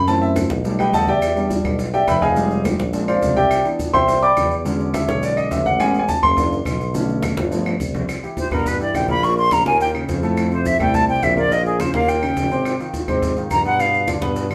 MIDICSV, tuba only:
0, 0, Header, 1, 2, 480
1, 0, Start_track
1, 0, Tempo, 285714
1, 128, Time_signature, 4, 2, 24, 8
1, 24439, End_track
2, 0, Start_track
2, 0, Title_t, "Tuba"
2, 0, Program_c, 0, 58
2, 0, Note_on_c, 0, 42, 90
2, 755, Note_off_c, 0, 42, 0
2, 835, Note_on_c, 0, 35, 94
2, 1511, Note_off_c, 0, 35, 0
2, 1559, Note_on_c, 0, 40, 90
2, 2674, Note_off_c, 0, 40, 0
2, 2759, Note_on_c, 0, 35, 90
2, 3435, Note_off_c, 0, 35, 0
2, 3477, Note_on_c, 0, 29, 97
2, 4595, Note_off_c, 0, 29, 0
2, 4681, Note_on_c, 0, 34, 90
2, 5358, Note_off_c, 0, 34, 0
2, 5399, Note_on_c, 0, 36, 98
2, 6080, Note_off_c, 0, 36, 0
2, 6606, Note_on_c, 0, 36, 96
2, 7282, Note_off_c, 0, 36, 0
2, 7330, Note_on_c, 0, 40, 91
2, 8446, Note_off_c, 0, 40, 0
2, 8538, Note_on_c, 0, 35, 86
2, 9211, Note_off_c, 0, 35, 0
2, 9257, Note_on_c, 0, 33, 93
2, 10371, Note_off_c, 0, 33, 0
2, 10461, Note_on_c, 0, 30, 97
2, 11134, Note_off_c, 0, 30, 0
2, 11175, Note_on_c, 0, 35, 96
2, 12291, Note_off_c, 0, 35, 0
2, 12387, Note_on_c, 0, 31, 100
2, 13058, Note_off_c, 0, 31, 0
2, 13107, Note_on_c, 0, 36, 86
2, 13780, Note_off_c, 0, 36, 0
2, 14309, Note_on_c, 0, 43, 93
2, 14979, Note_off_c, 0, 43, 0
2, 15030, Note_on_c, 0, 34, 93
2, 16138, Note_off_c, 0, 34, 0
2, 16221, Note_on_c, 0, 39, 84
2, 16894, Note_off_c, 0, 39, 0
2, 16937, Note_on_c, 0, 41, 96
2, 18049, Note_off_c, 0, 41, 0
2, 18133, Note_on_c, 0, 36, 97
2, 18807, Note_off_c, 0, 36, 0
2, 18856, Note_on_c, 0, 34, 97
2, 19965, Note_off_c, 0, 34, 0
2, 20055, Note_on_c, 0, 39, 91
2, 20725, Note_off_c, 0, 39, 0
2, 20772, Note_on_c, 0, 32, 91
2, 21444, Note_off_c, 0, 32, 0
2, 21972, Note_on_c, 0, 44, 99
2, 22640, Note_off_c, 0, 44, 0
2, 22684, Note_on_c, 0, 43, 88
2, 23792, Note_off_c, 0, 43, 0
2, 23875, Note_on_c, 0, 43, 90
2, 24439, Note_off_c, 0, 43, 0
2, 24439, End_track
0, 0, End_of_file